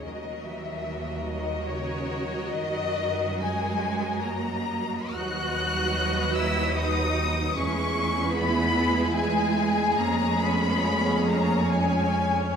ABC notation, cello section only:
X:1
M:3/4
L:1/8
Q:1/4=73
K:D#phr
V:1 name="Cello section"
D, E,2 D, C,2 | D,2 G,2 A,2 | [K:B] F3 E D2 | C2 B,2 G,2 |
A, B,2 A, G,2 |]